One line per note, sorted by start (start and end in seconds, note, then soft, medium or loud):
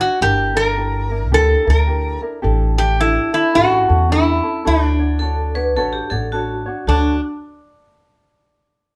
0.00 0.21 D4 soft
0.00 0.21 F#4 soft
0.00 0.22 F#4 medium
0.00 0.21 C#5 medium
0.21 1.32 G1 medium
0.21 0.55 D4 medium
0.21 0.55 E4 medium
0.21 0.55 G4 medium
0.21 0.57 G4 medium
0.21 0.53 A#4 medium
0.54 0.76 D4 soft
0.54 0.77 E4 soft
0.54 0.76 A#4 medium
0.54 1.34 A#4 loud
0.77 1.11 D4 medium
0.77 1.10 E4 medium
0.77 1.11 G4 medium
0.77 1.09 A#4 medium
1.10 1.31 D4 soft
1.10 1.32 E4 soft
1.10 1.32 A#4 soft
1.32 1.54 D2 medium
1.32 1.66 D4 medium
1.32 1.65 E4 medium
1.32 1.66 G4 medium
1.32 1.68 A4 loud
1.32 1.64 A#4 medium
1.65 2.17 D2 medium
1.65 1.87 D4 soft
1.65 1.88 E4 soft
1.65 1.87 A#4 medium
1.70 2.20 A#4 medium
1.87 2.22 D4 medium
1.87 2.21 E4 medium
1.87 2.21 G4 medium
1.87 2.21 A#4 medium
2.22 2.42 D4 soft
2.22 2.41 E4 soft
2.22 2.43 A#4 medium
2.42 3.16 A1 medium
2.42 2.77 D4 medium
2.42 2.77 E4 medium
2.42 2.77 G4 medium
2.42 2.76 A4 loud
2.77 2.98 D4 soft
2.77 2.99 E4 soft
2.77 3.00 G4 loud
2.77 2.99 A4 medium
2.98 3.33 D4 medium
2.98 3.32 E4 medium
2.98 3.31 E4 loud
2.98 3.33 G4 medium
2.98 3.31 A4 medium
3.33 3.55 D4 soft
3.33 3.54 E4 soft
3.33 3.56 E4 medium
3.33 3.54 A4 medium
3.54 3.77 A1 loud
3.54 3.89 C#4 medium
3.54 3.88 E4 medium
3.54 4.12 F#4 loud
3.54 3.88 G4 medium
3.54 3.87 A4 medium
3.88 4.39 E2 medium
3.88 4.08 C#4 soft
3.88 4.09 E4 medium
3.88 4.10 A4 medium
4.09 4.44 C#4 medium
4.09 4.43 E4 medium
4.09 4.67 E4 medium
4.09 4.44 G4 medium
4.09 4.42 A4 medium
4.43 4.65 C#4 soft
4.43 4.65 E4 medium
4.43 4.63 A4 medium
4.65 5.77 D2 loud
4.65 5.00 D4 medium
4.65 6.63 D4 medium
4.65 4.99 F#4 medium
4.65 4.99 A4 medium
4.65 4.98 C#5 medium
4.99 5.20 D4 soft
4.99 5.21 F#4 soft
4.99 5.21 C#5 medium
5.19 5.56 D4 medium
5.19 5.55 F#4 medium
5.19 5.55 A4 medium
5.23 5.54 C#5 medium
5.55 5.75 D4 soft
5.55 5.76 F#4 soft
5.55 5.77 B4 loud
5.55 5.76 C#5 medium
5.76 5.99 A1 loud
5.76 6.11 D4 medium
5.76 6.11 F#4 medium
5.76 5.94 A4 loud
5.76 6.11 A4 medium
5.76 6.10 C#5 loud
5.93 6.11 G4 medium
6.10 6.61 A1 medium
6.10 6.33 D4 soft
6.10 6.33 F#4 medium
6.10 6.33 A4 medium
6.10 6.32 C#5 medium
6.32 6.67 D4 medium
6.32 6.84 F#4 medium
6.32 6.66 F#4 medium
6.32 6.67 A4 medium
6.32 6.65 C#5 medium
6.66 6.87 D4 soft
6.66 6.88 F#4 medium
6.66 6.88 C#5 medium
6.87 7.19 D2 medium
6.87 7.15 D4 medium
6.87 7.20 D4 medium
6.87 7.19 F#4 medium
6.87 7.16 F#4 medium
6.87 7.15 A4 medium
6.87 7.16 C#5 medium